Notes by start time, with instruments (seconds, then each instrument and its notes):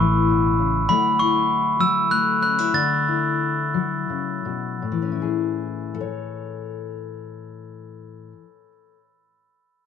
Already playing: fingered electric bass A1, steel-string acoustic guitar A2 E4, glockenspiel C#6
0.00 steel-string acoustic guitar E3
0.30 steel-string acoustic guitar B2
0.59 steel-string acoustic guitar C#3
0.88 steel-string acoustic guitar D3 F#3 A3 E4 F#4, glockenspiel B5
1.19 steel-string acoustic guitar E4, glockenspiel C#6
1.79 steel-string acoustic guitar F#3, glockenspiel E6
2.11 steel-string acoustic guitar A3, glockenspiel F#6
2.41 steel-string acoustic guitar C#4, glockenspiel F#6
2.59 steel-string acoustic guitar E4
2.73 steel-string acoustic guitar D3, glockenspiel A6
3.08 steel-string acoustic guitar E4
3.74 steel-string acoustic guitar F#3
4.10 steel-string acoustic guitar C#3
4.45 steel-string acoustic guitar B2
4.82 steel-string acoustic guitar A2
4.92 steel-string acoustic guitar E3
5.02 steel-string acoustic guitar C#4
5.12 steel-string acoustic guitar E4
5.22 steel-string acoustic guitar G#4
5.95 steel-string acoustic guitar A4
6.01 steel-string acoustic guitar C#5